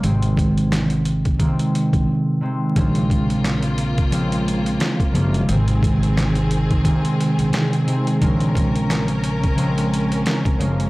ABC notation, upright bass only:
X:1
M:4/4
L:1/16
Q:"Swing 16ths" 1/4=88
K:Bbm
V:1 name="Upright bass" clef=bass
A,,,8 z3 B,,, z4 | B,,,12 z2 G,,,2 | A,,,8 z3 B,,, z4 | B,,,12 z2 G,,,2 |]